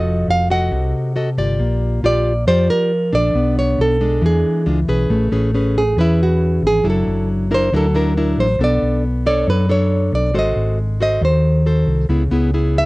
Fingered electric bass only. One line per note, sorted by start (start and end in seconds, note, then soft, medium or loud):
0.00 0.25 F1 loud
0.28 0.69 F1 medium
0.72 0.92 C2 medium
1.37 1.58 G1 medium
1.60 2.00 A#1 loud
2.03 2.44 A#1 medium
2.47 2.67 F2 medium
3.13 3.33 A#1 medium
3.34 3.75 B1 medium
3.78 4.19 B1 medium
4.22 4.42 E2 medium
4.66 4.86 C#2 medium
4.88 5.08 B1 medium
5.10 5.30 A1 loud
5.32 5.93 A1 medium
5.97 6.59 E2 medium
6.62 6.83 G#1 medium
6.84 7.05 F#1 loud
7.07 7.68 F#1 medium
7.72 8.34 D2 medium
8.37 8.58 A1 medium
8.59 8.80 B1 loud
8.82 9.43 B1 medium
9.47 10.09 F#2 medium
10.12 10.33 B1 medium
10.34 10.55 G#1 loud
10.56 11.18 G#1 medium
11.21 11.84 D#2 medium
11.87 12.08 C2 medium
12.09 12.30 C#2 loud
12.31 12.86 C#2 medium